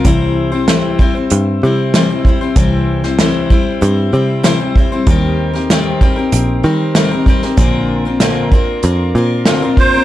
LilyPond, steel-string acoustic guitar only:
\new Staff \with { instrumentName = "Steel-string acoustic guitar" } { \time 4/4 \key c \mixolydian \tempo 4 = 96 <c e g c' e' c''>8. <g c' e' c''>16 <c e g c' e' c''>8 <g c' e' c''>16 <g c' e' c''>8. <g c' e' c''>8 <c e g c' e' c''>16 <g c' e' c''>16 <g c' e' c''>16 <g c' e' c''>16 | <c e g c' e' c''>8. <g c' e' c''>16 <c e g c' e' c''>8 <g c' e' c''>8 <g c' e' c''>8 <g c' e' c''>8 <c e g c' e' c''>16 <g c' e' c''>16 <g c' e' c''>16 <g c' e' c''>16 | <ees g c' g' bes'>8. <c' g' bes'>16 <ees g c' g' bes'>8 <g c' g' bes'>16 <c' g' bes'>8. <g c' g' bes'>8 <ees g c' g' bes'>16 <c' g' bes'>16 <g c' g' bes'>16 <c' g' bes'>16 | <bes, d bes c' f' bes'>8. <bes c' f' bes'>16 <bes, d bes c' f' bes'>8 <bes c' f' bes'>8 <bes c' f' bes'>8 <bes c' f' bes'>8 <bes, d bes c' f' bes'>16 <bes c' f' bes'>16 <bes c' f' bes'>16 <bes c' f' bes'>16 | }